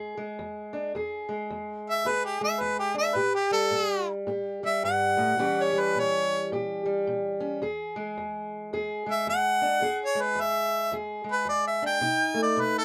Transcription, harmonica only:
1.90 2.10 E5 loud
2.08 2.24 B4 medium
2.25 2.43 G4 medium
2.44 2.63 E5 medium
2.61 2.79 B4 medium
2.79 2.98 G4 medium
2.98 3.17 E5 medium
3.16 3.34 B4 medium
3.35 3.52 G4 medium
3.53 4.08 A4 medium
4.66 4.84 E5 loud
4.85 5.64 F#5 loud
5.63 5.82 C#5 medium
5.80 6.01 B4 medium
5.99 6.52 C#5 loud
9.11 9.29 E5 medium
9.30 10.00 F#5 loud
10.06 10.23 C#5 medium
10.21 10.43 B4 medium
10.41 10.93 E5 loud
11.32 11.48 B4 medium
11.49 11.66 D5 medium
11.67 11.85 E5 medium
11.86 12.39 G5 loud
12.42 12.62 D5 medium
12.61 12.77 B4 medium
12.78 12.85 A4 medium

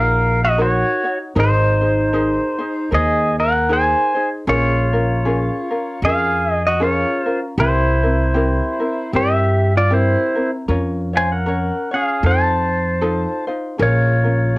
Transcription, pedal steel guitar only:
0.00 0.40 A#4 medium
0.00 0.45 F5 medium
0.45 0.59 F#4 medium
0.45 0.60 D#5 medium
0.62 1.18 F#4 medium
0.62 1.18 C#5 medium
1.39 2.89 D#4 medium
1.39 2.98 C5 loud
2.94 3.36 G#4 medium
2.94 3.36 D#5 medium
3.40 3.69 A#4 medium
3.40 3.72 F#5 medium
3.73 4.29 C5 medium
3.73 4.29 G#5 loud
4.49 6.00 F4 medium
4.49 6.08 C#5 medium
6.05 6.62 G#4 medium
6.05 6.53 F5 medium
6.53 6.67 D#5 medium
6.67 6.81 F#4 medium
6.67 6.82 D#5 medium
6.83 7.40 F4 medium
6.83 7.24 C#5 medium
7.24 7.39 C5 medium
7.60 9.11 E4 medium
7.60 9.10 C5 medium
9.16 9.72 G4 medium
9.16 9.77 E5 medium
9.77 9.91 F4 medium
9.77 9.93 D5 medium
9.94 10.50 E4 medium
9.94 10.50 C5 medium
11.17 11.31 C5 medium
11.17 11.32 G#5 medium
11.32 11.89 A#4 medium
11.32 11.95 F#5 medium
11.94 12.24 G#4 medium
11.94 12.26 F5 medium
12.26 13.45 C5 medium
12.26 13.44 A5 medium
13.82 14.58 F4 medium
13.82 14.58 C#5 medium

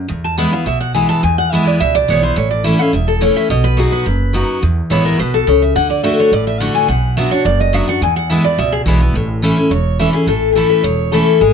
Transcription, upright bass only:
0.10 0.45 E2 medium
0.66 1.01 B1 medium
1.23 1.58 E2 medium
1.80 2.04 C#2 medium
2.09 2.33 B1 medium
2.37 2.72 A1 medium
2.93 3.28 E1 medium
3.50 3.85 B1 medium
4.06 4.41 F#1 medium
4.63 4.80 E2 medium
4.91 5.15 A1 medium
5.19 5.43 B1 medium
5.47 5.71 C#2 medium
5.75 6.10 D2 medium
6.32 6.67 A1 medium
6.88 7.24 B1 medium
7.45 7.80 F#1 medium
8.01 8.36 E2 loud
8.58 8.82 C#2 medium
8.86 9.10 B1 medium
9.14 9.49 A1 loud
9.71 10.06 E1 medium
10.27 10.62 A1 medium
10.84 11.19 E1 medium
11.41 11.53 G#1 medium

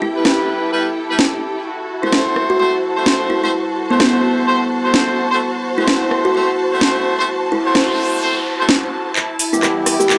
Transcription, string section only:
0.00 3.12 E4 medium
0.00 1.66 G4 medium
0.00 9.89 A4 medium
0.00 1.66 G5 medium
1.66 9.16 F#4 medium
2.18 9.16 C5 medium
2.39 9.99 A5 medium
9.16 10.18 E4 medium
9.54 10.18 G4 medium
9.80 10.18 G5 medium
10.07 10.18 B4 medium

